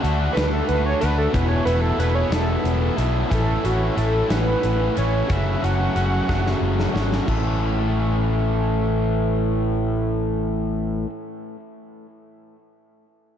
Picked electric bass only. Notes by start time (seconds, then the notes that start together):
0.04 D2
0.37 D2
0.69 D2
1.03 D2
1.34 E1
1.65 E1
1.98 E1
2.30 E1
2.64 E1
2.98 B1
3.32 A1
3.64 A1
3.97 A1
4.30 A1
4.64 A1
4.98 A1
5.30 F#1
5.63 F#1
5.95 F#1
6.29 F#1
6.61 F#1
6.95 G#1
7.28 A1